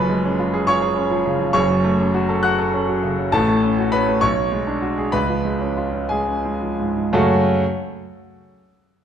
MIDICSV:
0, 0, Header, 1, 2, 480
1, 0, Start_track
1, 0, Key_signature, 3, "minor"
1, 0, Tempo, 586510
1, 1277, Time_signature, 6, 3, 24, 8
1, 2243, Tempo, 601805
1, 4163, Tempo, 638298
1, 4643, Tempo, 682594
1, 5603, Tempo, 645161
1, 7012, End_track
2, 0, Start_track
2, 0, Title_t, "Grand piano"
2, 0, Program_c, 0, 0
2, 0, Note_on_c, 0, 30, 98
2, 0, Note_on_c, 0, 42, 99
2, 0, Note_on_c, 0, 53, 78
2, 0, Note_on_c, 0, 71, 101
2, 0, Note_on_c, 0, 83, 127
2, 10, Control_c, 0, 64, 127
2, 78, Note_on_c, 0, 56, 83
2, 158, Note_off_c, 0, 53, 0
2, 203, Note_on_c, 0, 61, 85
2, 273, Note_off_c, 0, 56, 0
2, 322, Note_on_c, 0, 65, 86
2, 395, Note_off_c, 0, 61, 0
2, 438, Note_on_c, 0, 68, 91
2, 512, Note_off_c, 0, 65, 0
2, 528, Note_off_c, 0, 71, 0
2, 548, Note_on_c, 0, 85, 127
2, 555, Note_off_c, 0, 83, 0
2, 558, Note_on_c, 0, 65, 90
2, 558, Note_on_c, 0, 73, 110
2, 628, Note_off_c, 0, 68, 0
2, 672, Note_on_c, 0, 68, 89
2, 747, Note_off_c, 0, 65, 0
2, 788, Note_on_c, 0, 61, 84
2, 863, Note_off_c, 0, 68, 0
2, 910, Note_on_c, 0, 53, 78
2, 982, Note_off_c, 0, 61, 0
2, 1030, Note_on_c, 0, 49, 83
2, 1105, Note_off_c, 0, 53, 0
2, 1147, Note_on_c, 0, 53, 80
2, 1226, Note_off_c, 0, 49, 0
2, 1241, Note_off_c, 0, 85, 0
2, 1242, Note_off_c, 0, 30, 0
2, 1243, Note_off_c, 0, 73, 0
2, 1246, Note_off_c, 0, 42, 0
2, 1254, Note_on_c, 0, 85, 127
2, 1256, Note_on_c, 0, 30, 103
2, 1264, Note_on_c, 0, 42, 104
2, 1264, Note_on_c, 0, 73, 111
2, 1273, Note_off_c, 0, 53, 0
2, 1293, Control_c, 0, 64, 0
2, 1386, Note_on_c, 0, 54, 84
2, 1444, Control_c, 0, 64, 127
2, 1507, Note_on_c, 0, 57, 88
2, 1586, Note_off_c, 0, 54, 0
2, 1634, Note_on_c, 0, 61, 80
2, 1706, Note_off_c, 0, 57, 0
2, 1754, Note_on_c, 0, 66, 91
2, 1830, Note_off_c, 0, 61, 0
2, 1873, Note_on_c, 0, 69, 92
2, 1950, Note_off_c, 0, 66, 0
2, 1962, Note_off_c, 0, 73, 0
2, 1986, Note_on_c, 0, 90, 127
2, 1990, Note_off_c, 0, 85, 0
2, 1996, Note_on_c, 0, 78, 103
2, 1997, Note_on_c, 0, 66, 90
2, 2070, Note_off_c, 0, 69, 0
2, 2117, Note_on_c, 0, 69, 92
2, 2193, Note_off_c, 0, 66, 0
2, 2241, Note_on_c, 0, 61, 78
2, 2312, Note_off_c, 0, 69, 0
2, 2359, Note_on_c, 0, 54, 82
2, 2432, Note_off_c, 0, 61, 0
2, 2445, Note_off_c, 0, 78, 0
2, 2473, Note_off_c, 0, 90, 0
2, 2477, Note_on_c, 0, 49, 76
2, 2549, Note_off_c, 0, 54, 0
2, 2598, Note_on_c, 0, 54, 77
2, 2668, Note_off_c, 0, 49, 0
2, 2676, Note_off_c, 0, 30, 0
2, 2680, Note_off_c, 0, 42, 0
2, 2708, Note_on_c, 0, 81, 127
2, 2710, Note_on_c, 0, 33, 98
2, 2717, Note_on_c, 0, 69, 101
2, 2718, Note_off_c, 0, 54, 0
2, 2718, Note_on_c, 0, 45, 99
2, 2731, Control_c, 0, 64, 0
2, 2832, Note_on_c, 0, 57, 76
2, 2886, Control_c, 0, 64, 127
2, 2957, Note_on_c, 0, 61, 83
2, 3028, Note_off_c, 0, 57, 0
2, 3076, Note_on_c, 0, 66, 84
2, 3151, Note_off_c, 0, 61, 0
2, 3167, Note_off_c, 0, 69, 0
2, 3182, Note_on_c, 0, 83, 127
2, 3190, Note_on_c, 0, 71, 95
2, 3191, Note_on_c, 0, 61, 79
2, 3194, Note_off_c, 0, 81, 0
2, 3268, Note_off_c, 0, 66, 0
2, 3314, Note_on_c, 0, 57, 75
2, 3384, Note_off_c, 0, 61, 0
2, 3409, Note_off_c, 0, 33, 0
2, 3414, Note_off_c, 0, 45, 0
2, 3414, Note_off_c, 0, 71, 0
2, 3415, Note_on_c, 0, 85, 126
2, 3423, Note_on_c, 0, 73, 101
2, 3426, Note_off_c, 0, 83, 0
2, 3426, Note_on_c, 0, 35, 96
2, 3433, Note_off_c, 0, 57, 0
2, 3448, Control_c, 0, 64, 0
2, 3544, Note_on_c, 0, 54, 75
2, 3586, Control_c, 0, 64, 127
2, 3662, Note_on_c, 0, 56, 72
2, 3740, Note_off_c, 0, 54, 0
2, 3783, Note_on_c, 0, 62, 80
2, 3861, Note_off_c, 0, 56, 0
2, 3899, Note_on_c, 0, 66, 80
2, 3984, Note_off_c, 0, 62, 0
2, 4028, Note_on_c, 0, 68, 81
2, 4105, Note_off_c, 0, 66, 0
2, 4125, Note_off_c, 0, 73, 0
2, 4136, Note_off_c, 0, 35, 0
2, 4142, Note_on_c, 0, 83, 123
2, 4150, Note_on_c, 0, 71, 97
2, 4151, Note_on_c, 0, 37, 90
2, 4153, Note_off_c, 0, 85, 0
2, 4158, Note_off_c, 0, 68, 0
2, 4180, Control_c, 0, 64, 0
2, 4273, Note_on_c, 0, 53, 70
2, 4291, Control_c, 0, 64, 127
2, 4391, Note_on_c, 0, 56, 73
2, 4469, Note_off_c, 0, 53, 0
2, 4508, Note_on_c, 0, 61, 72
2, 4589, Note_off_c, 0, 56, 0
2, 4631, Note_on_c, 0, 65, 76
2, 4705, Note_off_c, 0, 61, 0
2, 4746, Note_on_c, 0, 61, 73
2, 4822, Note_off_c, 0, 65, 0
2, 4840, Note_off_c, 0, 71, 0
2, 4857, Note_on_c, 0, 80, 94
2, 4865, Note_off_c, 0, 83, 0
2, 4866, Note_on_c, 0, 56, 66
2, 4867, Note_on_c, 0, 68, 73
2, 4940, Note_off_c, 0, 61, 0
2, 4990, Note_on_c, 0, 61, 65
2, 5061, Note_off_c, 0, 56, 0
2, 5113, Note_on_c, 0, 56, 67
2, 5186, Note_off_c, 0, 61, 0
2, 5229, Note_on_c, 0, 53, 62
2, 5312, Note_off_c, 0, 56, 0
2, 5355, Note_on_c, 0, 44, 60
2, 5434, Note_off_c, 0, 53, 0
2, 5481, Note_on_c, 0, 53, 63
2, 5553, Note_off_c, 0, 44, 0
2, 5570, Note_off_c, 0, 37, 0
2, 5571, Note_off_c, 0, 68, 0
2, 5587, Note_on_c, 0, 42, 117
2, 5588, Note_on_c, 0, 49, 100
2, 5588, Note_on_c, 0, 78, 82
2, 5591, Note_on_c, 0, 61, 102
2, 5592, Note_on_c, 0, 57, 98
2, 5594, Note_off_c, 0, 80, 0
2, 5596, Note_on_c, 0, 66, 104
2, 5596, Note_on_c, 0, 69, 100
2, 5600, Note_off_c, 0, 53, 0
2, 5617, Control_c, 0, 64, 0
2, 5755, Control_c, 0, 64, 127
2, 5864, Note_off_c, 0, 42, 0
2, 5864, Note_off_c, 0, 49, 0
2, 5864, Note_off_c, 0, 78, 0
2, 5866, Note_off_c, 0, 57, 0
2, 5866, Note_off_c, 0, 61, 0
2, 5869, Note_off_c, 0, 66, 0
2, 5869, Note_off_c, 0, 69, 0
2, 5958, Control_c, 0, 64, 0
2, 7012, End_track
0, 0, End_of_file